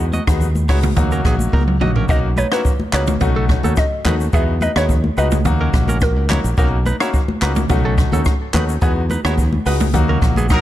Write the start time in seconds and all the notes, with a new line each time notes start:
Already playing: E2
0.13 F#4 D#5, high conga, shaker
0.27 D#2 G#3 B3 D#4 F#4, kick, cross-stick, shaker
0.40 low conga, shaker
0.55 high conga, shaker
0.68 C#2 G#3 B3 D#4 E4 F#4 C#5, kick, cross-stick, open hi-hat, shaker
0.83 mid tom, high conga, shaker
0.96 D#2 F#3 A#3 D#4 F#4, kick, hi-hat pedal, mid tom, low conga, shaker
1.11 C#4 A#4, shaker
1.25 A#1 B3 G#4, kick, cross-stick, shaker
1.39 high conga, shaker
1.53 C#2 D#4 A#4, kick, high tom, high conga
1.68 mid tom
1.81 A#1 F#3 A#3 D#4 F#4 D#5, mid tom, high conga, low conga
1.96 C#4 A#4, floor tom
2.09 B1 A#3 C#4 D#4 F#4 A#4 D#5, kick, shaker
2.37 D#4 B4 C#5, high conga, shaker
2.51 A#3 C#4 D#4 E4 F#4 B4 C#5, cross-stick, shaker
2.65 kick, low conga, shaker
2.80 high conga
2.93 C#2 A#3 C#4 D#4 F#4 B4 C#5, cross-stick, clap, shaker
3.07 mid tom, high conga, shaker
3.21 B1 A3 C#4 D#4 F#4, kick, mid tom, low conga, shaker
3.36 C#4 A4
3.49 kick, cross-stick, shaker
3.63 D#2 A3 C#4 D#4 F#4 A4, high conga, shaker
3.76 D#5, kick, cross-stick, shaker
4.05 D#2 A3 C#4 D#4 F#4 B4, clap, high conga, low conga, shaker
4.20 shaker
4.33 E2 G#3 B3 D#4 F#4 G#4 E5, kick, shaker
4.61 D#4 B4 D#5, high conga, shaker
4.76 D#2 G#3 B3 D#4 E4 F#4 C#5, cross-stick, shaker
4.89 kick, low conga, shaker
5.04 high conga
5.17 C#2 G#3 B3 D#4 F#4 B4 D#5, shaker
5.31 mid tom, high conga, shaker
5.45 D#2 F#3 A#3 D#4 F#4, kick, mid tom, low conga, shaker
5.61 C#4 A#4
5.73 A#1, kick, cross-stick, shaker
5.88 C#4 A#4, high conga, shaker
6.01 A#4, kick, cross-stick, shaker
6.16 C#2
6.29 F#3 A#3 D#4 E4 F#4 C#5, cross-stick, clap, high conga, low conga, shaker
6.44 A#1, shaker
6.57 B1 A#3 C#4 D#4 F#4 A#4, kick, shaker
6.86 D#4 B4, high conga, shaker
7.00 A#3 C#4 D#4 E4 F#4 C#5, cross-stick, shaker
7.13 kick, low conga, shaker
7.28 high conga
7.42 C#2 A#3 C#4 D#4 F#4 B4, cross-stick, clap, shaker
7.56 mid tom, high conga, shaker
7.70 B1 A3 C#4 D#4 F#4, kick, mid tom, low conga, shaker
7.85 C#4 A4
7.98 kick, cross-stick, shaker
8.12 D#2 A3 C#4 D#4 F#4 A4, high conga, shaker
8.25 kick, cross-stick, shaker
8.54 D#2 A3 C#4 D#4 F#4 B4, clap, high conga, low conga, shaker
8.69 shaker
8.82 E2 G#3 B3 D#4 F#4 G#4, kick, shaker
9.10 D#4 B4, high conga, shaker
9.24 D#2 G#3 B3 D#4 E4 F#4 C#5, cross-stick, shaker
9.38 kick, low conga, shaker
9.53 high conga
9.66 C#2 G#3 B3 D#4 F#4 B4, open hi-hat, shaker
9.80 mid tom, high conga, shaker
9.94 D#2 F#3 A#3 D#4 F#4, kick, hi-hat pedal, mid tom, low conga, shaker
10.09 C#4 A#4
10.22 A#1, kick, cross-stick, shaker
10.36 B3 G#4, high conga, shaker
10.49 F#3 D#4 A#4, kick, cross-stick, shaker